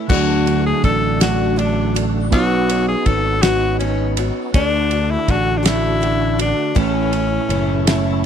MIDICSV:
0, 0, Header, 1, 7, 480
1, 0, Start_track
1, 0, Tempo, 739827
1, 62, Time_signature, 6, 3, 24, 8
1, 5358, End_track
2, 0, Start_track
2, 0, Title_t, "Clean electric guitar"
2, 0, Program_c, 0, 27
2, 58, Note_on_c, 0, 54, 94
2, 76, Note_on_c, 0, 74, 96
2, 762, Note_off_c, 0, 74, 0
2, 769, Note_on_c, 0, 74, 75
2, 789, Note_off_c, 0, 54, 0
2, 791, Note_on_c, 0, 54, 71
2, 1483, Note_off_c, 0, 74, 0
2, 2970, Note_on_c, 0, 69, 98
2, 3062, Note_off_c, 0, 54, 0
2, 3660, Note_off_c, 0, 69, 0
2, 3662, Note_on_c, 0, 69, 95
2, 4403, Note_off_c, 0, 69, 0
2, 4406, Note_on_c, 0, 69, 98
2, 5085, Note_off_c, 0, 69, 0
2, 5092, Note_on_c, 0, 69, 89
2, 5358, Note_off_c, 0, 69, 0
2, 5358, End_track
3, 0, Start_track
3, 0, Title_t, "Tenor saxophone"
3, 0, Program_c, 1, 66
3, 61, Note_on_c, 1, 66, 99
3, 397, Note_off_c, 1, 66, 0
3, 430, Note_on_c, 1, 68, 95
3, 539, Note_off_c, 1, 68, 0
3, 550, Note_on_c, 1, 69, 105
3, 771, Note_off_c, 1, 69, 0
3, 794, Note_on_c, 1, 66, 90
3, 1025, Note_on_c, 1, 62, 82
3, 1035, Note_off_c, 1, 66, 0
3, 1265, Note_off_c, 1, 62, 0
3, 1510, Note_on_c, 1, 66, 107
3, 1843, Note_off_c, 1, 66, 0
3, 1870, Note_on_c, 1, 68, 91
3, 1984, Note_on_c, 1, 69, 101
3, 1994, Note_off_c, 1, 68, 0
3, 2219, Note_on_c, 1, 66, 98
3, 2228, Note_off_c, 1, 69, 0
3, 2455, Note_off_c, 1, 66, 0
3, 2459, Note_on_c, 1, 61, 77
3, 2685, Note_off_c, 1, 61, 0
3, 2950, Note_on_c, 1, 62, 112
3, 3315, Note_on_c, 1, 64, 94
3, 3324, Note_off_c, 1, 62, 0
3, 3440, Note_on_c, 1, 66, 110
3, 3449, Note_off_c, 1, 64, 0
3, 3618, Note_on_c, 1, 62, 71
3, 3628, Note_off_c, 1, 66, 0
3, 3682, Note_on_c, 1, 64, 98
3, 3692, Note_off_c, 1, 62, 0
3, 4153, Note_off_c, 1, 64, 0
3, 4161, Note_on_c, 1, 62, 91
3, 4402, Note_on_c, 1, 61, 94
3, 4412, Note_off_c, 1, 62, 0
3, 5352, Note_off_c, 1, 61, 0
3, 5358, End_track
4, 0, Start_track
4, 0, Title_t, "Twelve-string acoustic guitar"
4, 0, Program_c, 2, 25
4, 58, Note_on_c, 2, 50, 75
4, 60, Note_on_c, 2, 57, 74
4, 63, Note_on_c, 2, 62, 93
4, 68, Note_on_c, 2, 66, 77
4, 290, Note_off_c, 2, 66, 0
4, 298, Note_on_c, 2, 66, 53
4, 299, Note_off_c, 2, 62, 0
4, 301, Note_off_c, 2, 50, 0
4, 302, Note_off_c, 2, 57, 0
4, 307, Note_on_c, 2, 62, 51
4, 312, Note_on_c, 2, 57, 44
4, 537, Note_off_c, 2, 57, 0
4, 539, Note_off_c, 2, 62, 0
4, 540, Note_on_c, 2, 50, 62
4, 541, Note_off_c, 2, 66, 0
4, 544, Note_on_c, 2, 57, 64
4, 547, Note_on_c, 2, 62, 61
4, 551, Note_on_c, 2, 66, 64
4, 771, Note_off_c, 2, 66, 0
4, 774, Note_off_c, 2, 62, 0
4, 775, Note_off_c, 2, 57, 0
4, 776, Note_off_c, 2, 50, 0
4, 779, Note_on_c, 2, 66, 73
4, 782, Note_on_c, 2, 57, 74
4, 782, Note_on_c, 2, 62, 67
4, 783, Note_on_c, 2, 50, 64
4, 1006, Note_off_c, 2, 50, 0
4, 1013, Note_off_c, 2, 57, 0
4, 1014, Note_on_c, 2, 50, 63
4, 1020, Note_off_c, 2, 62, 0
4, 1020, Note_on_c, 2, 57, 60
4, 1022, Note_off_c, 2, 66, 0
4, 1028, Note_on_c, 2, 62, 69
4, 1031, Note_on_c, 2, 66, 73
4, 1254, Note_off_c, 2, 66, 0
4, 1259, Note_off_c, 2, 62, 0
4, 1260, Note_off_c, 2, 50, 0
4, 1262, Note_on_c, 2, 66, 52
4, 1263, Note_off_c, 2, 57, 0
4, 1267, Note_on_c, 2, 62, 54
4, 1277, Note_on_c, 2, 57, 49
4, 1504, Note_off_c, 2, 66, 0
4, 1505, Note_on_c, 2, 59, 73
4, 1506, Note_off_c, 2, 62, 0
4, 1509, Note_off_c, 2, 57, 0
4, 1512, Note_on_c, 2, 63, 86
4, 1515, Note_on_c, 2, 66, 82
4, 1518, Note_on_c, 2, 73, 86
4, 1740, Note_off_c, 2, 73, 0
4, 1745, Note_off_c, 2, 59, 0
4, 1748, Note_off_c, 2, 66, 0
4, 1748, Note_on_c, 2, 73, 55
4, 1749, Note_off_c, 2, 63, 0
4, 1756, Note_on_c, 2, 66, 46
4, 1763, Note_on_c, 2, 63, 44
4, 1982, Note_off_c, 2, 63, 0
4, 1984, Note_on_c, 2, 59, 56
4, 1986, Note_off_c, 2, 66, 0
4, 1987, Note_off_c, 2, 73, 0
4, 1990, Note_on_c, 2, 63, 57
4, 1993, Note_on_c, 2, 66, 70
4, 1999, Note_on_c, 2, 73, 66
4, 2213, Note_off_c, 2, 73, 0
4, 2218, Note_off_c, 2, 66, 0
4, 2219, Note_off_c, 2, 63, 0
4, 2221, Note_on_c, 2, 73, 70
4, 2225, Note_off_c, 2, 59, 0
4, 2226, Note_on_c, 2, 66, 69
4, 2227, Note_on_c, 2, 63, 62
4, 2234, Note_on_c, 2, 59, 57
4, 2455, Note_off_c, 2, 59, 0
4, 2457, Note_off_c, 2, 63, 0
4, 2463, Note_off_c, 2, 73, 0
4, 2463, Note_on_c, 2, 59, 62
4, 2464, Note_off_c, 2, 66, 0
4, 2465, Note_on_c, 2, 63, 59
4, 2472, Note_on_c, 2, 66, 73
4, 2474, Note_on_c, 2, 73, 65
4, 2702, Note_off_c, 2, 73, 0
4, 2704, Note_off_c, 2, 59, 0
4, 2705, Note_off_c, 2, 63, 0
4, 2709, Note_off_c, 2, 66, 0
4, 2710, Note_on_c, 2, 73, 54
4, 2717, Note_on_c, 2, 66, 55
4, 2727, Note_on_c, 2, 63, 48
4, 2948, Note_off_c, 2, 73, 0
4, 2949, Note_off_c, 2, 63, 0
4, 2949, Note_on_c, 2, 50, 90
4, 2951, Note_on_c, 2, 57, 86
4, 2952, Note_off_c, 2, 66, 0
4, 2954, Note_on_c, 2, 62, 86
4, 2961, Note_on_c, 2, 66, 92
4, 3183, Note_off_c, 2, 66, 0
4, 3186, Note_off_c, 2, 62, 0
4, 3187, Note_off_c, 2, 50, 0
4, 3188, Note_off_c, 2, 57, 0
4, 3191, Note_on_c, 2, 66, 50
4, 3194, Note_on_c, 2, 62, 51
4, 3200, Note_on_c, 2, 57, 50
4, 3421, Note_off_c, 2, 57, 0
4, 3424, Note_off_c, 2, 62, 0
4, 3426, Note_on_c, 2, 50, 60
4, 3428, Note_off_c, 2, 66, 0
4, 3429, Note_on_c, 2, 57, 61
4, 3432, Note_on_c, 2, 62, 62
4, 3437, Note_on_c, 2, 66, 61
4, 3643, Note_off_c, 2, 66, 0
4, 3649, Note_off_c, 2, 62, 0
4, 3651, Note_on_c, 2, 66, 77
4, 3654, Note_off_c, 2, 57, 0
4, 3656, Note_off_c, 2, 50, 0
4, 3656, Note_on_c, 2, 62, 67
4, 3662, Note_on_c, 2, 57, 66
4, 3664, Note_on_c, 2, 50, 61
4, 3889, Note_off_c, 2, 50, 0
4, 3895, Note_off_c, 2, 57, 0
4, 3897, Note_on_c, 2, 50, 58
4, 3898, Note_off_c, 2, 62, 0
4, 3898, Note_off_c, 2, 66, 0
4, 3903, Note_on_c, 2, 57, 60
4, 3906, Note_on_c, 2, 62, 69
4, 3910, Note_on_c, 2, 66, 73
4, 4134, Note_off_c, 2, 66, 0
4, 4140, Note_off_c, 2, 62, 0
4, 4141, Note_off_c, 2, 50, 0
4, 4142, Note_on_c, 2, 66, 51
4, 4144, Note_off_c, 2, 57, 0
4, 4148, Note_on_c, 2, 62, 55
4, 4156, Note_on_c, 2, 57, 45
4, 4377, Note_off_c, 2, 57, 0
4, 4378, Note_on_c, 2, 45, 83
4, 4383, Note_off_c, 2, 66, 0
4, 4384, Note_on_c, 2, 52, 93
4, 4384, Note_on_c, 2, 57, 90
4, 4386, Note_off_c, 2, 62, 0
4, 4389, Note_on_c, 2, 61, 83
4, 4389, Note_on_c, 2, 64, 91
4, 4616, Note_off_c, 2, 64, 0
4, 4621, Note_off_c, 2, 45, 0
4, 4623, Note_on_c, 2, 64, 60
4, 4624, Note_off_c, 2, 52, 0
4, 4624, Note_off_c, 2, 57, 0
4, 4626, Note_off_c, 2, 61, 0
4, 4634, Note_on_c, 2, 61, 54
4, 4636, Note_on_c, 2, 57, 47
4, 4862, Note_off_c, 2, 57, 0
4, 4864, Note_off_c, 2, 64, 0
4, 4866, Note_on_c, 2, 52, 63
4, 4867, Note_off_c, 2, 61, 0
4, 4870, Note_on_c, 2, 57, 62
4, 4874, Note_on_c, 2, 61, 67
4, 4880, Note_on_c, 2, 64, 64
4, 5100, Note_off_c, 2, 64, 0
4, 5102, Note_off_c, 2, 61, 0
4, 5104, Note_off_c, 2, 57, 0
4, 5105, Note_off_c, 2, 52, 0
4, 5107, Note_on_c, 2, 64, 87
4, 5110, Note_on_c, 2, 61, 86
4, 5111, Note_on_c, 2, 57, 80
4, 5113, Note_on_c, 2, 52, 66
4, 5116, Note_on_c, 2, 45, 70
4, 5341, Note_off_c, 2, 52, 0
4, 5343, Note_off_c, 2, 57, 0
4, 5345, Note_off_c, 2, 64, 0
4, 5346, Note_off_c, 2, 61, 0
4, 5350, Note_off_c, 2, 45, 0
4, 5358, End_track
5, 0, Start_track
5, 0, Title_t, "Tonewheel organ"
5, 0, Program_c, 3, 16
5, 42, Note_on_c, 3, 57, 68
5, 43, Note_on_c, 3, 66, 72
5, 44, Note_on_c, 3, 62, 69
5, 1480, Note_off_c, 3, 57, 0
5, 1481, Note_off_c, 3, 62, 0
5, 1481, Note_off_c, 3, 66, 0
5, 1498, Note_on_c, 3, 61, 73
5, 1499, Note_on_c, 3, 59, 80
5, 1506, Note_on_c, 3, 63, 72
5, 2928, Note_off_c, 3, 59, 0
5, 2928, Note_off_c, 3, 61, 0
5, 2932, Note_off_c, 3, 63, 0
5, 2935, Note_on_c, 3, 57, 77
5, 2935, Note_on_c, 3, 66, 73
5, 2941, Note_on_c, 3, 62, 73
5, 4365, Note_off_c, 3, 57, 0
5, 4365, Note_off_c, 3, 66, 0
5, 4368, Note_off_c, 3, 62, 0
5, 4374, Note_on_c, 3, 64, 76
5, 4376, Note_on_c, 3, 61, 80
5, 4377, Note_on_c, 3, 57, 74
5, 5358, Note_off_c, 3, 57, 0
5, 5358, Note_off_c, 3, 61, 0
5, 5358, Note_off_c, 3, 64, 0
5, 5358, End_track
6, 0, Start_track
6, 0, Title_t, "Fingered electric bass"
6, 0, Program_c, 4, 33
6, 64, Note_on_c, 4, 38, 86
6, 466, Note_off_c, 4, 38, 0
6, 543, Note_on_c, 4, 33, 96
6, 1506, Note_off_c, 4, 33, 0
6, 1506, Note_on_c, 4, 35, 105
6, 1908, Note_off_c, 4, 35, 0
6, 1985, Note_on_c, 4, 32, 88
6, 2789, Note_off_c, 4, 32, 0
6, 2947, Note_on_c, 4, 38, 107
6, 3348, Note_off_c, 4, 38, 0
6, 3428, Note_on_c, 4, 33, 106
6, 4230, Note_off_c, 4, 33, 0
6, 4387, Note_on_c, 4, 33, 102
6, 4788, Note_off_c, 4, 33, 0
6, 4860, Note_on_c, 4, 30, 94
6, 5358, Note_off_c, 4, 30, 0
6, 5358, End_track
7, 0, Start_track
7, 0, Title_t, "Drums"
7, 64, Note_on_c, 9, 36, 124
7, 64, Note_on_c, 9, 49, 103
7, 129, Note_off_c, 9, 36, 0
7, 129, Note_off_c, 9, 49, 0
7, 306, Note_on_c, 9, 51, 73
7, 370, Note_off_c, 9, 51, 0
7, 544, Note_on_c, 9, 36, 87
7, 544, Note_on_c, 9, 51, 80
7, 609, Note_off_c, 9, 36, 0
7, 609, Note_off_c, 9, 51, 0
7, 785, Note_on_c, 9, 51, 108
7, 788, Note_on_c, 9, 38, 116
7, 850, Note_off_c, 9, 51, 0
7, 853, Note_off_c, 9, 38, 0
7, 1029, Note_on_c, 9, 51, 79
7, 1094, Note_off_c, 9, 51, 0
7, 1273, Note_on_c, 9, 51, 80
7, 1338, Note_off_c, 9, 51, 0
7, 1506, Note_on_c, 9, 51, 117
7, 1507, Note_on_c, 9, 36, 119
7, 1571, Note_off_c, 9, 51, 0
7, 1572, Note_off_c, 9, 36, 0
7, 1748, Note_on_c, 9, 51, 88
7, 1813, Note_off_c, 9, 51, 0
7, 1984, Note_on_c, 9, 51, 78
7, 1987, Note_on_c, 9, 36, 87
7, 2049, Note_off_c, 9, 51, 0
7, 2052, Note_off_c, 9, 36, 0
7, 2224, Note_on_c, 9, 51, 106
7, 2227, Note_on_c, 9, 38, 124
7, 2288, Note_off_c, 9, 51, 0
7, 2292, Note_off_c, 9, 38, 0
7, 2468, Note_on_c, 9, 51, 80
7, 2533, Note_off_c, 9, 51, 0
7, 2705, Note_on_c, 9, 51, 77
7, 2770, Note_off_c, 9, 51, 0
7, 2946, Note_on_c, 9, 51, 100
7, 2948, Note_on_c, 9, 36, 118
7, 3011, Note_off_c, 9, 51, 0
7, 3013, Note_off_c, 9, 36, 0
7, 3184, Note_on_c, 9, 51, 71
7, 3249, Note_off_c, 9, 51, 0
7, 3427, Note_on_c, 9, 51, 82
7, 3428, Note_on_c, 9, 36, 84
7, 3492, Note_off_c, 9, 51, 0
7, 3493, Note_off_c, 9, 36, 0
7, 3668, Note_on_c, 9, 51, 107
7, 3671, Note_on_c, 9, 38, 116
7, 3733, Note_off_c, 9, 51, 0
7, 3736, Note_off_c, 9, 38, 0
7, 3910, Note_on_c, 9, 51, 67
7, 3975, Note_off_c, 9, 51, 0
7, 4148, Note_on_c, 9, 51, 78
7, 4212, Note_off_c, 9, 51, 0
7, 4386, Note_on_c, 9, 36, 115
7, 4386, Note_on_c, 9, 51, 99
7, 4451, Note_off_c, 9, 36, 0
7, 4451, Note_off_c, 9, 51, 0
7, 4623, Note_on_c, 9, 51, 69
7, 4688, Note_off_c, 9, 51, 0
7, 4866, Note_on_c, 9, 51, 79
7, 4931, Note_off_c, 9, 51, 0
7, 5107, Note_on_c, 9, 51, 111
7, 5111, Note_on_c, 9, 38, 127
7, 5172, Note_off_c, 9, 51, 0
7, 5175, Note_off_c, 9, 38, 0
7, 5358, End_track
0, 0, End_of_file